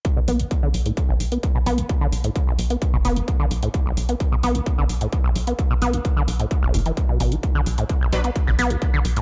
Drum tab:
HH |x-oxx-oxx-oxx-ox|x-oxx-oxx-oxx-ox|x-oxx-oxx-oxx-ox|x-oxx-oxx-oxx-ox|
BD |o---o---o---o---|o---o---o---o---|o---o---o---o---|o---o---o---o---|

HH |x-oxx-oxx-oxx-ox|
BD |o---o---o---o---|